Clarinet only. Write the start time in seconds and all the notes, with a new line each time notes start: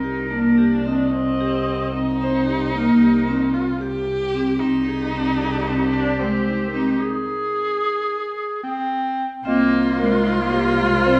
Already playing: A#4
0.87 D#5
2.23 C5
2.77 A#4
4.62 G4
7.00 G#4
8.63 C4
9.47 A#3
10.02 G#3
10.40 A#3
10.81 G#3
11.06 G3